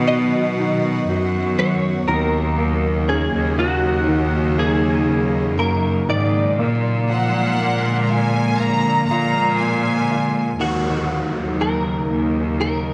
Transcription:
0.00 1.05 B2 loud
0.00 2.06 B2 medium
0.00 2.05 D#3 medium
0.00 1.05 F#3 medium
0.00 6.55 F#3 medium
0.00 2.05 B3 medium
0.00 0.57 D#4 medium
0.00 2.05 F#4 medium
0.08 1.08 F#4 medium
0.08 1.58 D#5 loud
0.59 2.05 D#4 medium
1.08 2.05 F#2 medium
1.08 2.06 F#4 medium
1.59 2.07 F#3 medium
1.59 2.05 C#5 loud
2.08 3.30 D#2 loud
2.08 6.55 C#3 medium
2.08 4.07 D#3 medium
2.08 6.55 A#3 medium
2.08 6.55 D#4 medium
2.08 3.11 A#4 loud
2.58 3.57 A#3 medium
3.08 5.05 C#4 medium
3.08 3.55 G#4 medium
3.34 5.59 D#2 medium
3.58 4.57 A#3 medium
3.58 4.59 F#4 medium
4.08 6.05 D#3 medium
4.58 5.58 A#3 medium
4.58 5.55 G#4 loud
5.08 6.55 C#3 medium
5.59 6.05 F#2 medium
5.59 6.56 A#3 medium
5.59 6.09 A#4 medium
6.09 6.56 G#2 medium
6.09 6.57 D#3 medium
6.09 9.55 D5 medium
6.59 9.05 A#2 loud
6.59 10.55 D3 medium
6.59 10.55 F3 medium
6.59 10.55 G#3 medium
6.59 7.58 A#3 medium
6.59 10.55 A#3 medium
7.09 9.05 F3 medium
7.09 7.98 F#5 medium
7.59 8.58 A#3 medium
8.03 8.09 A#5 medium
8.09 9.09 F4 medium
8.09 8.59 G#5 medium
8.59 9.59 A#3 medium
8.59 9.06 A#5 loud
9.07 10.55 A#2 loud
9.07 10.09 F4 medium
9.07 9.55 A#5 loud
9.59 10.57 A#3 medium
9.59 10.59 G#5 medium
10.11 10.59 F4 medium
10.59 11.30 D#2 medium
10.59 12.94 C#3 medium
10.59 11.59 D#3 medium
10.59 12.94 F#3 medium
10.59 12.94 A#3 medium
10.59 12.94 D#4 medium
10.59 11.56 F#4 medium
10.59 downlifter medium
11.10 12.09 A#3 soft
11.34 12.05 D#2 medium
11.60 12.58 D#3 soft
11.60 12.56 A#4 medium
12.09 12.94 D#2 medium
12.09 12.94 A#3 soft
12.60 12.94 D#3 soft
12.60 12.94 A#4 medium

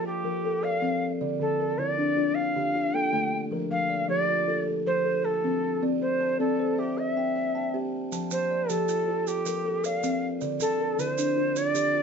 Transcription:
0.00 0.24 F4 medium
0.00 0.43 A4 medium
0.05 0.65 G4 medium
0.05 0.63 A4 medium
0.24 0.63 F3 medium
0.24 0.82 A#4 medium
0.44 0.82 A4 medium
0.63 1.21 C5 medium
0.63 1.20 D5 medium
0.63 1.07 F5 medium
0.82 1.21 F3 medium
0.82 1.20 C4 medium
1.21 1.59 D3 medium
1.21 1.59 D5 medium
1.40 1.78 D3 medium
1.40 1.80 A4 medium
1.60 2.17 A#4 medium
1.78 2.17 D3 medium
1.78 2.36 E4 medium
1.78 1.89 C#5 loud
1.89 2.36 D5 loud
1.98 2.36 D4 medium
2.17 2.55 D4 medium
2.17 2.74 F4 medium
2.35 2.94 F4 medium
2.35 2.96 F5 loud
2.56 2.94 D3 medium
2.56 3.14 G4 medium
2.75 3.14 F4 medium
2.94 3.52 A#3 medium
2.94 3.52 A4 medium
2.94 3.37 G5 loud
3.13 3.52 D3 medium
3.13 3.52 A3 medium
3.51 3.90 F3 medium
3.51 3.90 A#4 medium
3.71 4.09 F3 medium
3.71 4.07 F5 loud
3.89 4.48 D5 medium
4.09 4.48 F3 medium
4.09 4.67 G4 medium
4.09 4.63 D5 loud
4.29 4.67 F4 medium
4.48 4.86 F4 medium
4.48 5.04 A4 medium
4.67 5.25 A4 medium
4.86 5.25 F3 medium
4.86 5.44 A#4 medium
4.86 5.26 C5 medium
5.05 5.44 A4 medium
5.25 5.82 A4 medium
5.25 5.82 C5 medium
5.44 5.83 F3 medium
5.44 5.81 C4 medium
5.82 6.21 C4 medium
5.82 6.21 D5 medium
6.02 6.40 C4 medium
6.02 6.37 C5 medium
6.21 6.78 A5 medium
6.40 6.78 C4 medium
6.40 6.80 A4 medium
6.40 6.98 D5 medium
6.59 6.98 C5 medium
6.78 7.00 G4 medium
6.78 7.17 C5 medium
6.78 7.34 E5 medium
6.98 7.55 E5 medium
6.98 7.74 E5 medium
7.17 7.55 C4 medium
7.17 7.54 G5 medium
7.36 7.74 E5 medium
7.55 8.12 G5 medium
7.55 8.11 A5 medium
7.74 8.12 C4 medium
7.74 8.12 G4 medium
8.12 8.51 F3 medium
8.12 8.51 A5 medium
8.12 maracas medium
8.31 8.70 F3 medium
8.31 8.72 C5 medium
8.31 maracas medium
8.51 9.08 D5 medium
8.69 9.08 F3 medium
8.69 9.27 G4 medium
8.69 9.29 A4 medium
8.69 maracas medium
8.88 9.27 F4 medium
8.88 maracas medium
9.08 9.46 F4 medium
9.08 9.64 A4 medium
9.27 9.86 G4 medium
9.27 9.84 A4 medium
9.27 maracas medium
9.46 9.84 F3 medium
9.46 10.04 A#4 medium
9.46 maracas medium
9.65 10.03 A4 medium
9.84 10.42 C5 medium
9.84 10.40 D5 medium
9.84 10.27 F5 medium
9.84 maracas medium
10.03 10.41 F3 medium
10.03 10.42 C4 medium
10.03 maracas medium
10.41 10.80 D3 medium
10.41 10.79 D5 medium
10.41 maracas soft
10.60 10.99 D3 medium
10.60 11.01 A4 medium
10.60 maracas medium
10.80 11.37 A#4 medium
10.99 11.37 D3 medium
10.99 11.56 E4 medium
10.99 11.59 C5 medium
10.99 maracas medium
11.18 11.56 D4 medium
11.18 maracas medium
11.37 11.75 D4 medium
11.37 11.93 F4 medium
11.56 12.03 F4 medium
11.56 12.03 D5 loud
11.56 maracas medium
11.74 12.03 D3 medium
11.74 12.03 G4 medium
11.74 maracas medium
11.94 12.03 F4 medium

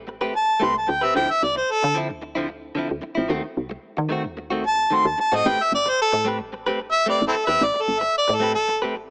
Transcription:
0.00 0.46 A1 medium
0.07 muted clean electric guitar stroke soft
0.21 0.33 A3 medium
0.21 0.33 C4 medium
0.21 0.34 G4 medium
0.21 0.34 B4 medium
0.34 0.65 A5 medium
0.34 muted clean electric guitar stroke soft
0.60 0.86 C2 medium
0.60 0.75 A3 medium
0.60 0.74 C4 medium
0.60 0.74 G4 medium
0.60 0.73 B4 medium
0.60 0.76 C6 medium
0.74 0.92 A5 medium
0.74 muted clean electric guitar stroke soft
0.87 1.13 D2 medium
0.87 1.06 G5 medium
0.87 muted clean electric guitar stroke soft
1.01 1.15 C4 soft
1.01 1.16 G4 medium
1.01 1.15 B4 soft
1.01 1.15 E5 medium
1.14 1.27 D2 medium
1.14 1.29 D3 medium
1.14 1.29 F3 medium
1.14 1.28 C4 medium
1.14 1.28 E4 medium
1.14 1.32 G5 medium
1.29 1.45 E5 medium
1.29 muted clean electric guitar stroke soft
1.43 1.63 C2 medium
1.43 1.56 D5 medium
1.55 1.73 C5 medium
1.55 muted clean electric guitar stroke soft
1.71 1.97 A4 medium
1.82 2.12 D3 medium
1.82 muted clean electric guitar stroke soft
1.95 2.10 D3 medium
1.95 2.10 F3 medium
1.95 2.09 C4 medium
1.95 2.08 E4 medium
2.09 2.72 D2 medium
2.09 muted clean electric guitar stroke soft
2.22 muted clean electric guitar stroke soft
2.35 2.47 D3 medium
2.35 2.48 F3 medium
2.35 2.48 C4 medium
2.35 2.49 E4 medium
2.48 muted clean electric guitar stroke soft
2.75 2.90 D3 medium
2.75 2.90 F3 medium
2.75 2.89 C4 medium
2.75 2.88 E4 medium
2.89 3.01 D2 medium
2.89 muted clean electric guitar stroke medium
3.02 muted clean electric guitar stroke soft
3.15 3.27 A1 medium
3.15 3.29 F3 medium
3.15 3.29 C4 medium
3.15 3.29 E4 medium
3.29 3.41 D#2 loud
3.29 3.44 D#3 medium
3.29 3.43 A3 medium
3.29 3.42 C4 medium
3.29 3.41 F#4 medium
3.43 muted clean electric guitar stroke soft
3.57 3.78 C2 medium
3.70 muted clean electric guitar stroke soft
3.97 4.26 D#3 medium
3.97 muted clean electric guitar stroke medium
4.09 4.25 D#3 medium
4.09 4.25 A3 medium
4.09 4.24 C4 medium
4.09 4.23 F#4 medium
4.24 4.86 D#2 medium
4.24 muted clean electric guitar stroke soft
4.37 muted clean electric guitar stroke soft
4.50 4.63 D#3 medium
4.50 4.64 A3 medium
4.50 4.64 C4 medium
4.50 4.64 F#4 medium
4.64 4.96 A5 medium
4.64 muted clean electric guitar stroke soft
4.90 5.06 D#3 medium
4.90 5.06 A3 medium
4.90 5.05 C4 medium
4.90 5.04 F#4 medium
4.95 5.09 C6 medium
5.05 5.15 D#2 medium
5.05 5.19 A5 medium
5.05 muted clean electric guitar stroke soft
5.18 5.37 A5 medium
5.18 muted clean electric guitar stroke soft
5.32 5.43 A2 medium
5.32 5.43 A3 soft
5.32 5.44 C4 medium
5.32 5.45 F#4 medium
5.32 5.50 D#5 medium
5.44 5.57 A1 loud
5.44 5.59 A3 medium
5.44 5.59 C4 medium
5.44 5.58 G4 medium
5.44 5.57 B4 medium
5.49 5.64 G5 medium
5.59 muted clean electric guitar stroke soft
5.63 5.74 E5 medium
5.72 5.93 G1 medium
5.72 5.91 D5 medium
5.86 muted clean electric guitar stroke soft
5.90 6.00 C5 medium
6.02 6.27 A4 medium
6.12 6.42 A2 medium
6.12 muted clean electric guitar stroke soft
6.25 6.40 A3 medium
6.25 6.39 C4 medium
6.25 6.39 G4 medium
6.25 6.38 B4 medium
6.39 7.01 A1 medium
6.39 muted clean electric guitar stroke medium
6.53 muted clean electric guitar stroke soft
6.66 6.79 A3 medium
6.66 6.79 C4 medium
6.66 6.80 G4 medium
6.66 6.80 B4 medium
6.80 muted clean electric guitar stroke soft
6.91 7.08 E5 loud
7.06 7.21 A3 medium
7.06 7.21 C4 medium
7.06 7.20 G4 medium
7.06 7.19 B4 medium
7.06 7.26 D5 medium
7.20 7.31 A1 medium
7.20 muted clean electric guitar stroke soft
7.27 7.35 C4 medium
7.27 7.35 E4 medium
7.27 7.48 A4 medium
7.34 muted clean electric guitar stroke soft
7.46 7.58 E2 medium
7.46 7.64 G4 medium
7.46 7.63 B4 medium
7.46 7.66 E5 loud
7.51 7.65 C4 soft
7.61 7.72 A1 loud
7.61 7.83 D5 medium
7.74 muted clean electric guitar stroke soft
7.82 8.01 A4 medium
7.88 8.08 G1 medium
8.00 8.16 E5 medium
8.00 muted clean electric guitar stroke soft
8.18 8.37 D5 medium
8.28 8.57 A2 medium
8.28 muted clean electric guitar stroke soft
8.35 8.52 A4 medium
8.40 8.55 A3 medium
8.40 8.55 C4 medium
8.40 8.54 G4 medium
8.40 8.54 B4 medium
8.54 9.10 A1 medium
8.54 8.79 A4 medium
8.54 muted clean electric guitar stroke soft
8.68 muted clean electric guitar stroke soft
8.82 8.94 A3 medium
8.82 8.95 C4 medium
8.82 8.95 G4 medium
8.82 8.95 B4 medium
8.95 muted clean electric guitar stroke soft

